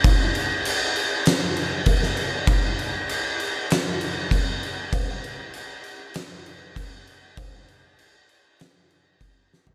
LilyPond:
\new DrumStaff \with { instrumentName = "Drums" } \drummode { \time 4/4 \tempo 4 = 98 <cymc bd>8 cymc8 cymc8 cymc8 <cymc sn>8 cymc8 <cymc bd>16 sn16 cymc8 | <cymc bd>8 cymc8 cymc8 cymc8 <cymc sn>8 cymc8 <cymc bd>8 cymc8 | <cymc bd>8 cymc8 cymc8 cymc8 <cymc sn>8 cymc8 <cymc bd>8 cymc8 | <cymc bd>8 cymc8 cymc8 cymc8 <cymc sn>8 cymc8 <cymc bd>8 sn16 tomfh16 | }